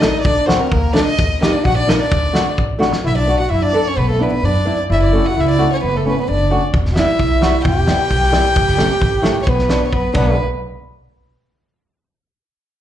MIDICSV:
0, 0, Header, 1, 6, 480
1, 0, Start_track
1, 0, Tempo, 462963
1, 261, Time_signature, 2, 2, 24, 8
1, 6979, Tempo, 454201
1, 13401, End_track
2, 0, Start_track
2, 0, Title_t, "Violin"
2, 0, Program_c, 0, 40
2, 3, Note_on_c, 0, 75, 78
2, 220, Note_off_c, 0, 75, 0
2, 226, Note_on_c, 0, 74, 84
2, 481, Note_on_c, 0, 72, 74
2, 496, Note_off_c, 0, 74, 0
2, 614, Note_on_c, 0, 70, 75
2, 630, Note_off_c, 0, 72, 0
2, 718, Note_off_c, 0, 70, 0
2, 724, Note_on_c, 0, 70, 75
2, 968, Note_on_c, 0, 74, 89
2, 983, Note_off_c, 0, 70, 0
2, 1086, Note_off_c, 0, 74, 0
2, 1092, Note_on_c, 0, 75, 99
2, 1437, Note_off_c, 0, 75, 0
2, 1475, Note_on_c, 0, 75, 74
2, 1586, Note_on_c, 0, 74, 68
2, 1602, Note_off_c, 0, 75, 0
2, 1710, Note_off_c, 0, 74, 0
2, 1722, Note_on_c, 0, 78, 89
2, 1830, Note_off_c, 0, 78, 0
2, 1838, Note_on_c, 0, 74, 87
2, 1958, Note_on_c, 0, 75, 85
2, 1974, Note_off_c, 0, 74, 0
2, 2069, Note_off_c, 0, 75, 0
2, 2076, Note_on_c, 0, 74, 85
2, 2635, Note_off_c, 0, 74, 0
2, 3183, Note_on_c, 0, 76, 86
2, 3283, Note_off_c, 0, 76, 0
2, 3298, Note_on_c, 0, 74, 84
2, 3511, Note_off_c, 0, 74, 0
2, 3521, Note_on_c, 0, 78, 74
2, 3631, Note_off_c, 0, 78, 0
2, 3642, Note_on_c, 0, 76, 78
2, 3759, Note_on_c, 0, 74, 90
2, 3775, Note_off_c, 0, 76, 0
2, 4010, Note_on_c, 0, 73, 85
2, 4026, Note_off_c, 0, 74, 0
2, 4126, Note_on_c, 0, 71, 91
2, 4142, Note_off_c, 0, 73, 0
2, 4241, Note_off_c, 0, 71, 0
2, 4249, Note_on_c, 0, 69, 80
2, 4378, Note_on_c, 0, 71, 72
2, 4394, Note_off_c, 0, 69, 0
2, 4480, Note_off_c, 0, 71, 0
2, 4486, Note_on_c, 0, 71, 75
2, 4610, Note_on_c, 0, 74, 81
2, 4625, Note_off_c, 0, 71, 0
2, 4962, Note_off_c, 0, 74, 0
2, 5105, Note_on_c, 0, 76, 88
2, 5202, Note_off_c, 0, 76, 0
2, 5223, Note_on_c, 0, 74, 72
2, 5454, Note_on_c, 0, 78, 80
2, 5470, Note_off_c, 0, 74, 0
2, 5605, Note_on_c, 0, 76, 87
2, 5620, Note_off_c, 0, 78, 0
2, 5691, Note_off_c, 0, 76, 0
2, 5697, Note_on_c, 0, 74, 91
2, 5907, Note_off_c, 0, 74, 0
2, 5937, Note_on_c, 0, 73, 75
2, 6036, Note_off_c, 0, 73, 0
2, 6045, Note_on_c, 0, 71, 78
2, 6183, Note_on_c, 0, 69, 65
2, 6199, Note_off_c, 0, 71, 0
2, 6285, Note_off_c, 0, 69, 0
2, 6316, Note_on_c, 0, 71, 64
2, 6405, Note_off_c, 0, 71, 0
2, 6431, Note_on_c, 0, 71, 66
2, 6521, Note_off_c, 0, 71, 0
2, 6537, Note_on_c, 0, 74, 72
2, 6854, Note_off_c, 0, 74, 0
2, 7230, Note_on_c, 0, 76, 82
2, 7910, Note_off_c, 0, 76, 0
2, 7948, Note_on_c, 0, 79, 116
2, 9767, Note_off_c, 0, 79, 0
2, 9830, Note_on_c, 0, 73, 58
2, 9900, Note_on_c, 0, 71, 68
2, 9916, Note_off_c, 0, 73, 0
2, 10287, Note_off_c, 0, 71, 0
2, 10293, Note_on_c, 0, 73, 46
2, 10355, Note_on_c, 0, 71, 65
2, 10371, Note_off_c, 0, 73, 0
2, 10591, Note_off_c, 0, 71, 0
2, 10598, Note_on_c, 0, 71, 79
2, 10819, Note_off_c, 0, 71, 0
2, 13401, End_track
3, 0, Start_track
3, 0, Title_t, "Trombone"
3, 0, Program_c, 1, 57
3, 25, Note_on_c, 1, 63, 78
3, 261, Note_off_c, 1, 63, 0
3, 267, Note_on_c, 1, 62, 74
3, 515, Note_on_c, 1, 60, 73
3, 531, Note_off_c, 1, 62, 0
3, 758, Note_on_c, 1, 58, 71
3, 773, Note_off_c, 1, 60, 0
3, 984, Note_on_c, 1, 62, 73
3, 1000, Note_off_c, 1, 58, 0
3, 1107, Note_off_c, 1, 62, 0
3, 1465, Note_on_c, 1, 63, 74
3, 1590, Note_on_c, 1, 62, 90
3, 1606, Note_off_c, 1, 63, 0
3, 1703, Note_on_c, 1, 66, 88
3, 1718, Note_off_c, 1, 62, 0
3, 1824, Note_off_c, 1, 66, 0
3, 1830, Note_on_c, 1, 62, 67
3, 2049, Note_off_c, 1, 62, 0
3, 2055, Note_on_c, 1, 62, 61
3, 2625, Note_off_c, 1, 62, 0
3, 3158, Note_on_c, 1, 64, 94
3, 3284, Note_on_c, 1, 62, 80
3, 3299, Note_off_c, 1, 64, 0
3, 3508, Note_off_c, 1, 62, 0
3, 3514, Note_on_c, 1, 66, 91
3, 3636, Note_on_c, 1, 64, 82
3, 3651, Note_off_c, 1, 66, 0
3, 3760, Note_on_c, 1, 62, 75
3, 3776, Note_off_c, 1, 64, 0
3, 3999, Note_off_c, 1, 62, 0
3, 4016, Note_on_c, 1, 61, 69
3, 4101, Note_on_c, 1, 59, 74
3, 4117, Note_off_c, 1, 61, 0
3, 4230, Note_on_c, 1, 57, 69
3, 4245, Note_off_c, 1, 59, 0
3, 4366, Note_on_c, 1, 59, 69
3, 4382, Note_off_c, 1, 57, 0
3, 4601, Note_off_c, 1, 59, 0
3, 4607, Note_on_c, 1, 62, 78
3, 4935, Note_off_c, 1, 62, 0
3, 5088, Note_on_c, 1, 64, 89
3, 5465, Note_off_c, 1, 64, 0
3, 5490, Note_on_c, 1, 66, 66
3, 5557, Note_on_c, 1, 64, 94
3, 5572, Note_off_c, 1, 66, 0
3, 5930, Note_on_c, 1, 61, 70
3, 5946, Note_off_c, 1, 64, 0
3, 6037, Note_on_c, 1, 59, 77
3, 6052, Note_off_c, 1, 61, 0
3, 6170, Note_on_c, 1, 57, 66
3, 6186, Note_off_c, 1, 59, 0
3, 6285, Note_on_c, 1, 59, 61
3, 6301, Note_off_c, 1, 57, 0
3, 6396, Note_off_c, 1, 59, 0
3, 6406, Note_on_c, 1, 59, 75
3, 6521, Note_on_c, 1, 62, 66
3, 6536, Note_off_c, 1, 59, 0
3, 6870, Note_off_c, 1, 62, 0
3, 7177, Note_on_c, 1, 66, 54
3, 7235, Note_on_c, 1, 64, 67
3, 7251, Note_off_c, 1, 66, 0
3, 7963, Note_on_c, 1, 67, 87
3, 7979, Note_off_c, 1, 64, 0
3, 9859, Note_off_c, 1, 67, 0
3, 9865, Note_on_c, 1, 59, 79
3, 10316, Note_off_c, 1, 59, 0
3, 10351, Note_on_c, 1, 59, 66
3, 10576, Note_off_c, 1, 59, 0
3, 10616, Note_on_c, 1, 59, 90
3, 10829, Note_off_c, 1, 59, 0
3, 13401, End_track
4, 0, Start_track
4, 0, Title_t, "Nylon-string guitar"
4, 0, Program_c, 2, 24
4, 3, Note_on_c, 2, 57, 62
4, 8, Note_on_c, 2, 62, 60
4, 14, Note_on_c, 2, 69, 65
4, 132, Note_off_c, 2, 57, 0
4, 135, Note_off_c, 2, 62, 0
4, 138, Note_off_c, 2, 69, 0
4, 485, Note_on_c, 2, 57, 66
4, 490, Note_on_c, 2, 62, 59
4, 492, Note_on_c, 2, 66, 69
4, 616, Note_off_c, 2, 57, 0
4, 617, Note_off_c, 2, 62, 0
4, 619, Note_off_c, 2, 66, 0
4, 963, Note_on_c, 2, 57, 66
4, 972, Note_on_c, 2, 62, 67
4, 977, Note_on_c, 2, 69, 71
4, 1097, Note_off_c, 2, 57, 0
4, 1100, Note_off_c, 2, 62, 0
4, 1103, Note_off_c, 2, 69, 0
4, 1461, Note_on_c, 2, 58, 71
4, 1464, Note_on_c, 2, 63, 65
4, 1474, Note_on_c, 2, 67, 81
4, 1587, Note_off_c, 2, 58, 0
4, 1588, Note_off_c, 2, 63, 0
4, 1593, Note_off_c, 2, 67, 0
4, 1942, Note_on_c, 2, 58, 65
4, 1942, Note_on_c, 2, 63, 65
4, 1957, Note_on_c, 2, 70, 78
4, 2067, Note_off_c, 2, 63, 0
4, 2069, Note_off_c, 2, 58, 0
4, 2076, Note_off_c, 2, 70, 0
4, 2412, Note_on_c, 2, 57, 59
4, 2417, Note_on_c, 2, 62, 50
4, 2421, Note_on_c, 2, 66, 66
4, 2544, Note_off_c, 2, 57, 0
4, 2547, Note_off_c, 2, 62, 0
4, 2548, Note_off_c, 2, 66, 0
4, 2889, Note_on_c, 2, 57, 76
4, 2894, Note_on_c, 2, 62, 67
4, 2903, Note_on_c, 2, 66, 88
4, 3023, Note_off_c, 2, 57, 0
4, 3024, Note_off_c, 2, 62, 0
4, 3030, Note_off_c, 2, 66, 0
4, 3387, Note_on_c, 2, 59, 57
4, 3396, Note_on_c, 2, 62, 54
4, 3405, Note_on_c, 2, 66, 62
4, 3512, Note_off_c, 2, 59, 0
4, 3517, Note_off_c, 2, 62, 0
4, 3521, Note_off_c, 2, 66, 0
4, 3866, Note_on_c, 2, 59, 70
4, 3872, Note_on_c, 2, 62, 63
4, 3878, Note_on_c, 2, 69, 68
4, 3991, Note_off_c, 2, 59, 0
4, 3994, Note_off_c, 2, 62, 0
4, 3998, Note_off_c, 2, 69, 0
4, 4352, Note_on_c, 2, 59, 59
4, 4357, Note_on_c, 2, 62, 57
4, 4364, Note_on_c, 2, 64, 64
4, 4474, Note_off_c, 2, 59, 0
4, 4475, Note_off_c, 2, 62, 0
4, 4480, Note_off_c, 2, 64, 0
4, 4822, Note_on_c, 2, 59, 60
4, 4829, Note_on_c, 2, 62, 54
4, 4837, Note_on_c, 2, 64, 75
4, 4948, Note_off_c, 2, 59, 0
4, 4952, Note_off_c, 2, 62, 0
4, 4956, Note_off_c, 2, 64, 0
4, 5312, Note_on_c, 2, 57, 59
4, 5319, Note_on_c, 2, 61, 58
4, 5334, Note_on_c, 2, 66, 68
4, 5432, Note_off_c, 2, 57, 0
4, 5436, Note_off_c, 2, 61, 0
4, 5443, Note_off_c, 2, 66, 0
4, 5786, Note_on_c, 2, 57, 64
4, 5789, Note_on_c, 2, 61, 59
4, 5794, Note_on_c, 2, 66, 68
4, 5908, Note_off_c, 2, 57, 0
4, 5910, Note_off_c, 2, 61, 0
4, 5910, Note_off_c, 2, 66, 0
4, 6270, Note_on_c, 2, 57, 59
4, 6280, Note_on_c, 2, 61, 59
4, 6289, Note_on_c, 2, 64, 59
4, 6388, Note_off_c, 2, 57, 0
4, 6394, Note_off_c, 2, 61, 0
4, 6395, Note_off_c, 2, 64, 0
4, 6738, Note_on_c, 2, 57, 55
4, 6745, Note_on_c, 2, 61, 59
4, 6751, Note_on_c, 2, 66, 77
4, 6860, Note_off_c, 2, 57, 0
4, 6864, Note_off_c, 2, 61, 0
4, 6867, Note_off_c, 2, 66, 0
4, 7236, Note_on_c, 2, 55, 67
4, 7243, Note_on_c, 2, 59, 54
4, 7248, Note_on_c, 2, 64, 75
4, 7352, Note_off_c, 2, 55, 0
4, 7353, Note_off_c, 2, 59, 0
4, 7357, Note_off_c, 2, 64, 0
4, 7694, Note_on_c, 2, 55, 63
4, 7699, Note_on_c, 2, 59, 60
4, 7710, Note_on_c, 2, 66, 71
4, 7822, Note_off_c, 2, 55, 0
4, 7824, Note_off_c, 2, 59, 0
4, 7830, Note_off_c, 2, 66, 0
4, 8193, Note_on_c, 2, 55, 60
4, 8199, Note_on_c, 2, 59, 61
4, 8207, Note_on_c, 2, 64, 72
4, 8313, Note_off_c, 2, 55, 0
4, 8316, Note_off_c, 2, 59, 0
4, 8319, Note_off_c, 2, 64, 0
4, 8656, Note_on_c, 2, 55, 80
4, 8662, Note_on_c, 2, 59, 72
4, 8665, Note_on_c, 2, 64, 97
4, 8785, Note_off_c, 2, 55, 0
4, 8789, Note_off_c, 2, 59, 0
4, 8789, Note_off_c, 2, 64, 0
4, 9129, Note_on_c, 2, 54, 76
4, 9136, Note_on_c, 2, 57, 69
4, 9144, Note_on_c, 2, 61, 81
4, 9263, Note_off_c, 2, 54, 0
4, 9266, Note_off_c, 2, 57, 0
4, 9270, Note_off_c, 2, 61, 0
4, 9609, Note_on_c, 2, 54, 74
4, 9618, Note_on_c, 2, 64, 84
4, 9620, Note_on_c, 2, 57, 68
4, 9743, Note_off_c, 2, 54, 0
4, 9747, Note_off_c, 2, 64, 0
4, 9749, Note_off_c, 2, 57, 0
4, 10092, Note_on_c, 2, 54, 56
4, 10105, Note_on_c, 2, 59, 58
4, 10110, Note_on_c, 2, 62, 66
4, 10224, Note_off_c, 2, 54, 0
4, 10231, Note_off_c, 2, 59, 0
4, 10233, Note_off_c, 2, 62, 0
4, 10573, Note_on_c, 2, 62, 85
4, 10577, Note_on_c, 2, 54, 76
4, 10583, Note_on_c, 2, 59, 67
4, 10806, Note_off_c, 2, 62, 0
4, 10809, Note_off_c, 2, 54, 0
4, 10809, Note_off_c, 2, 59, 0
4, 13401, End_track
5, 0, Start_track
5, 0, Title_t, "Upright bass"
5, 0, Program_c, 3, 32
5, 257, Note_on_c, 3, 38, 84
5, 549, Note_off_c, 3, 38, 0
5, 743, Note_on_c, 3, 38, 72
5, 1034, Note_off_c, 3, 38, 0
5, 1231, Note_on_c, 3, 39, 78
5, 1520, Note_off_c, 3, 39, 0
5, 1712, Note_on_c, 3, 34, 74
5, 2002, Note_off_c, 3, 34, 0
5, 2197, Note_on_c, 3, 38, 81
5, 2485, Note_off_c, 3, 38, 0
5, 2677, Note_on_c, 3, 33, 74
5, 2965, Note_off_c, 3, 33, 0
5, 3157, Note_on_c, 3, 35, 87
5, 3445, Note_off_c, 3, 35, 0
5, 3634, Note_on_c, 3, 42, 62
5, 3923, Note_off_c, 3, 42, 0
5, 4114, Note_on_c, 3, 35, 87
5, 4402, Note_off_c, 3, 35, 0
5, 4590, Note_on_c, 3, 42, 71
5, 4879, Note_off_c, 3, 42, 0
5, 5078, Note_on_c, 3, 30, 86
5, 5364, Note_off_c, 3, 30, 0
5, 5559, Note_on_c, 3, 37, 77
5, 5844, Note_off_c, 3, 37, 0
5, 6042, Note_on_c, 3, 30, 77
5, 6324, Note_off_c, 3, 30, 0
5, 6517, Note_on_c, 3, 30, 74
5, 6799, Note_off_c, 3, 30, 0
5, 6987, Note_on_c, 3, 28, 85
5, 7276, Note_off_c, 3, 28, 0
5, 7474, Note_on_c, 3, 35, 67
5, 7762, Note_off_c, 3, 35, 0
5, 7952, Note_on_c, 3, 28, 93
5, 8241, Note_off_c, 3, 28, 0
5, 8436, Note_on_c, 3, 35, 79
5, 8724, Note_off_c, 3, 35, 0
5, 8915, Note_on_c, 3, 30, 84
5, 9204, Note_off_c, 3, 30, 0
5, 9394, Note_on_c, 3, 33, 76
5, 9683, Note_off_c, 3, 33, 0
5, 9877, Note_on_c, 3, 35, 79
5, 10164, Note_off_c, 3, 35, 0
5, 10358, Note_on_c, 3, 42, 65
5, 10501, Note_off_c, 3, 42, 0
5, 10590, Note_on_c, 3, 35, 82
5, 10815, Note_off_c, 3, 35, 0
5, 13401, End_track
6, 0, Start_track
6, 0, Title_t, "Drums"
6, 19, Note_on_c, 9, 38, 90
6, 122, Note_off_c, 9, 38, 0
6, 258, Note_on_c, 9, 36, 80
6, 362, Note_off_c, 9, 36, 0
6, 510, Note_on_c, 9, 38, 86
6, 613, Note_off_c, 9, 38, 0
6, 742, Note_on_c, 9, 36, 69
6, 846, Note_off_c, 9, 36, 0
6, 987, Note_on_c, 9, 38, 80
6, 1090, Note_off_c, 9, 38, 0
6, 1230, Note_on_c, 9, 36, 83
6, 1334, Note_off_c, 9, 36, 0
6, 1476, Note_on_c, 9, 38, 86
6, 1579, Note_off_c, 9, 38, 0
6, 1712, Note_on_c, 9, 36, 55
6, 1816, Note_off_c, 9, 36, 0
6, 1960, Note_on_c, 9, 38, 85
6, 2063, Note_off_c, 9, 38, 0
6, 2194, Note_on_c, 9, 36, 86
6, 2298, Note_off_c, 9, 36, 0
6, 2435, Note_on_c, 9, 38, 80
6, 2538, Note_off_c, 9, 38, 0
6, 2676, Note_on_c, 9, 36, 54
6, 2779, Note_off_c, 9, 36, 0
6, 2919, Note_on_c, 9, 38, 47
6, 3022, Note_off_c, 9, 38, 0
6, 3031, Note_on_c, 9, 38, 66
6, 3135, Note_off_c, 9, 38, 0
6, 6986, Note_on_c, 9, 36, 84
6, 7091, Note_off_c, 9, 36, 0
6, 7107, Note_on_c, 9, 38, 29
6, 7212, Note_off_c, 9, 38, 0
6, 7220, Note_on_c, 9, 38, 85
6, 7326, Note_off_c, 9, 38, 0
6, 7468, Note_on_c, 9, 36, 58
6, 7574, Note_off_c, 9, 36, 0
6, 7707, Note_on_c, 9, 38, 84
6, 7813, Note_off_c, 9, 38, 0
6, 7950, Note_on_c, 9, 36, 81
6, 8056, Note_off_c, 9, 36, 0
6, 8187, Note_on_c, 9, 38, 90
6, 8293, Note_off_c, 9, 38, 0
6, 8432, Note_on_c, 9, 36, 51
6, 8537, Note_off_c, 9, 36, 0
6, 8550, Note_on_c, 9, 38, 23
6, 8656, Note_off_c, 9, 38, 0
6, 8670, Note_on_c, 9, 38, 82
6, 8776, Note_off_c, 9, 38, 0
6, 8913, Note_on_c, 9, 36, 90
6, 9018, Note_off_c, 9, 36, 0
6, 9033, Note_on_c, 9, 38, 30
6, 9138, Note_off_c, 9, 38, 0
6, 9150, Note_on_c, 9, 38, 78
6, 9256, Note_off_c, 9, 38, 0
6, 9393, Note_on_c, 9, 36, 59
6, 9499, Note_off_c, 9, 36, 0
6, 9632, Note_on_c, 9, 38, 84
6, 9738, Note_off_c, 9, 38, 0
6, 9873, Note_on_c, 9, 36, 78
6, 9979, Note_off_c, 9, 36, 0
6, 9994, Note_on_c, 9, 38, 26
6, 10100, Note_off_c, 9, 38, 0
6, 10110, Note_on_c, 9, 38, 81
6, 10216, Note_off_c, 9, 38, 0
6, 10355, Note_on_c, 9, 36, 52
6, 10460, Note_off_c, 9, 36, 0
6, 10586, Note_on_c, 9, 49, 64
6, 10592, Note_on_c, 9, 36, 77
6, 10692, Note_off_c, 9, 49, 0
6, 10698, Note_off_c, 9, 36, 0
6, 13401, End_track
0, 0, End_of_file